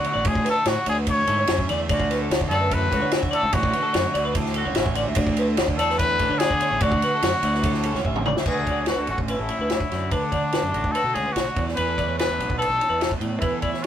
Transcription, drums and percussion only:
0.04 ride
0.25 kick, ride
0.35 kick
0.46 snare, ride
0.65 snare, ride
0.86 ride
1.07 kick, ride
1.27 ride
1.47 snare, ride
1.58 kick
1.69 ride
1.89 kick, ride
2.00 kick
2.11 snare, ride
2.31 snare, ride
2.41 kick
2.51 ride
2.71 kick, ride
2.92 kick, ride
3.11 snare, ride
3.23 kick
3.33 ride
3.53 kick, ride
3.63 kick
3.73 ride
3.94 snare, ride
4.15 ride
4.35 kick, ride
4.46 snare
4.54 ride
4.75 snare, ride
4.86 kick
4.95 ride
5.15 kick, ride
5.27 kick
5.37 ride
5.57 snare, ride
5.68 kick
5.79 ride
5.90 snare
5.99 kick, ride
6.19 kick, ride
6.40 snare, ride
6.50 kick
6.60 ride
6.80 kick, ride
6.92 kick
7.02 ride
7.22 snare, ride
7.43 ride
7.54 snare
7.63 kick, ride
7.74 snare
7.83 ride
7.95 snare
8.05 kick
8.16 mid tom
8.26 mid tom
8.37 snare
8.46 kick, crash
8.67 kick, ride
8.86 snare, ride
9.07 ride
9.18 kick
9.28 ride
9.49 ride
9.70 snare, ride
9.80 kick
9.91 snare, ride
10.11 kick, ride
10.32 kick, ride
10.52 snare, ride
10.74 ride
10.84 kick
10.95 ride
11.15 ride
11.36 snare, ride
11.56 kick, ride
11.68 snare
11.77 ride
11.98 kick, ride
12.19 snare, ride
12.40 ride
12.50 kick
12.62 ride
12.81 ride
13.01 snare, ride
13.11 kick
13.21 ride
13.41 kick, ride
13.62 kick, ride
13.74 snare

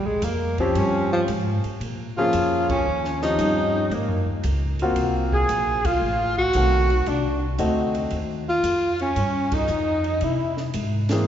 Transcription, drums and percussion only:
0.22 hi-hat pedal, ride
0.58 kick, ride
0.75 ride
1.28 hi-hat pedal, ride
1.64 ride
1.81 ride
2.33 hi-hat pedal, ride
2.70 kick, ride
3.04 snare
3.22 snare
3.39 hi-hat pedal, ride
3.91 ride
4.43 hi-hat pedal, ride
4.79 ride
4.96 ride
5.33 kick
5.49 hi-hat pedal, ride
5.85 kick, ride
6.37 kick
6.53 hi-hat pedal, ride
6.90 ride
7.06 ride
7.58 hi-hat pedal, ride
7.95 ride
8.10 ride
8.64 hi-hat pedal, ride
8.99 ride
9.16 ride
9.52 kick, ride
9.68 hi-hat pedal
10.04 ride
10.21 ride
10.57 snare
10.74 hi-hat pedal, ride
11.09 snare, ride

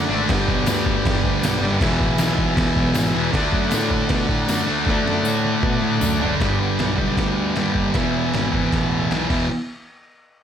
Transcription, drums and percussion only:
0.29 kick, snare, crash
0.48 kick
0.66 snare, tambourine, crash
0.86 kick
1.05 kick, snare, crash
1.24 kick
1.43 snare, tambourine, crash
1.81 kick, snare, crash
2.00 kick
2.18 snare, tambourine, crash
2.38 kick
2.57 kick, snare, crash
2.76 kick
2.94 snare, tambourine, crash
3.33 kick, snare, crash
3.53 kick
3.71 snare, tambourine, crash
3.90 kick
4.09 kick, snare, crash
4.29 kick
4.48 snare, tambourine, crash
4.87 kick, snare
5.08 snare
5.25 tambourine
5.45 high tom
5.63 kick, mid tom
6.01 floor tom, tambourine
6.21 floor tom
6.40 kick, snare, open hi-hat
6.79 snare, open hi-hat
6.98 kick
7.17 kick, snare, open hi-hat
7.56 snare, open hi-hat
7.75 kick
7.94 kick, snare, open hi-hat
8.34 snare, open hi-hat
8.53 kick
8.72 kick, snare, open hi-hat
9.11 snare, open hi-hat
9.30 kick, crash

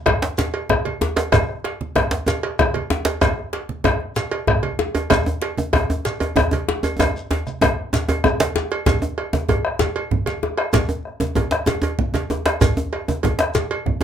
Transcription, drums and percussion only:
0.06 bombo rim, bombo low, cowbell, djembe tone, low conga, djembe bass
0.22 djembe slap, high conga
0.38 cowbell, djembe slap, high conga, djembe tone, shekere
0.54 bombo rim, cowbell
0.69 bombo rim, bombo low, high conga, low conga, djembe bass
0.85 bombo rim, cowbell, high conga
1.01 djembe slap, djembe tone
1.16 cowbell, djembe slap, high conga, shekere
1.32 bombo rim, bombo low, cowbell, djembe tone, low conga, djembe bass, shekere
1.49 bombo rim
1.64 cowbell, djembe slap
1.81 high conga
1.95 bombo rim, bombo low, cowbell, djembe tone, low conga
2.11 djembe slap
2.27 cowbell, djembe slap, djembe tone, high conga, shekere
2.43 bombo rim, cowbell, high conga
2.59 bombo rim, bombo low, high conga, djembe bass, low conga, shekere
2.74 cowbell, high conga
2.90 djembe slap, djembe tone
3.05 cowbell, djembe slap, shekere
3.21 bombo rim, bombo low, cowbell, djembe tone, djembe bass, low conga, shekere
3.38 bombo rim
3.53 cowbell, djembe slap
3.69 high conga
3.84 bombo rim, bombo low, cowbell, djembe tone, djembe bass, low conga
4.00 djembe slap
4.16 cowbell, djembe slap, high conga, shekere
4.31 bombo rim, cowbell, high conga
4.47 bombo rim, bombo low, high conga, djembe bass, low conga
4.63 cowbell, high conga
4.79 djembe slap, djembe tone
4.95 cowbell, djembe tone, shekere
5.10 bombo rim, bombo low, cowbell, low conga, djembe bass, shekere
5.26 bombo rim, djembe tone
5.42 cowbell, djembe slap
5.58 high conga, djembe tone
5.73 bombo rim, bombo low, cowbell, djembe tone, djembe bass, low conga
5.89 djembe slap, djembe tone
6.05 cowbell, djembe slap, high conga, shekere
6.20 bombo rim, cowbell, high conga, djembe tone
6.36 bombo rim, bombo low, high conga, djembe bass, low conga, shekere
6.51 cowbell, djembe tone, high conga
6.69 djembe slap, djembe tone
6.83 cowbell, djembe tone, shekere
6.99 bombo rim, bombo low, cowbell, djembe slap, djembe tone, djembe bass, low conga, shekere
7.16 djembe slap, shekere
7.31 cowbell, djembe slap, djembe tone
7.47 bombo rim, high conga, shekere
7.61 bombo rim, bombo low, cowbell, djembe slap, djembe tone, high conga, djembe bass, low conga
7.93 bombo rim, cowbell, djembe slap, djembe tone, high conga, shekere
8.08 bombo rim, cowbell, djembe tone
8.24 bombo rim, bombo low, high conga, low conga, djembe bass, shekere
8.40 cowbell, djembe slap, high conga, shekere
8.55 bombo rim, djembe slap, high conga, djembe tone, shekere
8.71 cowbell, djembe slap
8.86 bombo low, cowbell, djembe slap, djembe tone, low conga, djembe bass, shekere
9.02 djembe tone
9.18 bombo rim, cowbell
9.33 bombo rim, djembe slap, djembe tone, high conga
9.49 bombo low, cowbell, djembe tone, low conga
9.65 bombo rim
9.79 cowbell, djembe slap, djembe bass, shekere
9.96 cowbell
10.11 bombo low, low conga
10.26 cowbell, djembe slap, high conga, shekere
10.42 bombo rim, djembe slap, high conga, djembe tone
10.57 bombo rim, cowbell
10.73 bombo low, cowbell, djembe slap, djembe tone, djembe bass, low conga, shekere
10.89 djembe tone
11.05 bombo rim
11.20 bombo rim, djembe slap, djembe tone, high conga
11.35 bombo low, cowbell, djembe tone, low conga
11.51 bombo rim, djembe slap
11.66 cowbell, djembe slap, djembe tone, djembe bass, shekere
11.82 cowbell, djembe tone
11.99 bombo low, low conga
12.14 cowbell, djembe slap, djembe tone, high conga, shekere
12.30 bombo rim, djembe slap, djembe tone, high conga
12.46 bombo rim, cowbell, djembe slap
12.61 bombo low, cowbell, djembe slap, djembe tone, low conga, djembe bass, shekere
12.77 djembe tone
12.93 bombo rim, cowbell
13.08 bombo rim, djembe slap, djembe tone, high conga
13.23 bombo low, cowbell, djembe tone, low conga
13.39 bombo rim, djembe slap
13.55 cowbell, djembe slap, djembe bass, shekere
13.71 cowbell
13.86 bombo low, low conga

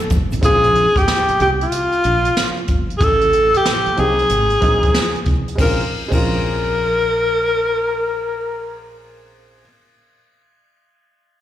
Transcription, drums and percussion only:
0.10 kick, closed hi-hat, low conga, shaker
0.31 closed hi-hat, shaker
0.43 kick, closed hi-hat
0.63 closed hi-hat
0.75 closed hi-hat
0.96 kick, closed hi-hat
1.08 snare
1.28 closed hi-hat
1.40 closed hi-hat
1.61 closed hi-hat
1.72 closed hi-hat
1.92 closed hi-hat
2.04 closed hi-hat
2.25 closed hi-hat
2.37 snare
2.57 closed hi-hat
2.68 kick, closed hi-hat
2.90 closed hi-hat
3.01 kick, closed hi-hat
3.21 closed hi-hat
3.33 closed hi-hat
3.54 closed hi-hat
3.65 snare
3.86 closed hi-hat
3.97 closed hi-hat
4.19 closed hi-hat
4.29 closed hi-hat
4.50 closed hi-hat
4.62 kick, closed hi-hat
4.83 kick, closed hi-hat
4.94 snare
5.14 closed hi-hat
5.25 kick, closed hi-hat
5.48 closed hi-hat
5.58 kick, ride
6.12 kick, ride

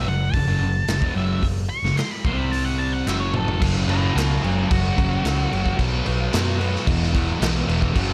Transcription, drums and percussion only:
0.34 kick, open hi-hat
0.88 snare, clap, open hi-hat
1.02 kick
1.43 kick, open hi-hat
1.85 snare
1.98 snare, clap, open hi-hat
2.25 kick
2.53 open hi-hat
3.08 snare, clap
3.34 mid tom
3.48 floor tom
3.62 kick, crash
3.89 crash
4.18 snare, clap, crash
4.44 crash
4.71 kick, crash
4.98 kick, crash
5.25 snare, clap, crash
5.53 crash
5.66 kick
5.79 kick, crash
6.06 crash
6.33 snare, clap, crash
6.61 crash
6.75 snare
6.87 kick, crash
7.03 snare
7.15 kick, crash
7.42 snare, clap, crash
7.69 crash
7.82 kick
7.96 kick, crash

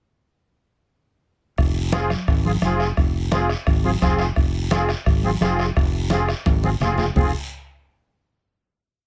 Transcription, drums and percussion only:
1.58 bombo low, bombo rim, high conga, long guiro
1.92 bombo rim, high conga, short guiro
2.10 bombo rim, high conga, short guiro
2.28 bombo low, bombo rim, high conga, long guiro
2.45 high conga
2.62 bombo rim, high conga, short guiro
2.80 bombo rim, short guiro
2.97 bombo low, bombo rim, high conga, long guiro
3.32 bombo rim, high conga, short guiro
3.49 bombo rim, short guiro
3.67 bombo low, bombo rim, high conga, long guiro
3.85 high conga
4.02 bombo low, bombo rim, high conga, short guiro
4.19 bombo rim, short guiro
4.36 bombo low, bombo rim, high conga, long guiro
4.71 bombo rim, high conga, short guiro
4.89 bombo rim, short guiro
5.06 bombo low, bombo rim, high conga, long guiro
5.24 high conga
5.41 bombo rim, high conga, short guiro
5.59 bombo rim, short guiro
5.76 bombo low, bombo rim, high conga, long guiro
6.10 bombo rim, high conga, short guiro
6.29 bombo rim, short guiro
6.46 bombo low, bombo rim, high conga, long guiro
6.64 high conga
6.81 bombo rim, low conga, short guiro
6.98 bombo rim, low conga, short guiro
7.16 bombo low, low conga, long guiro

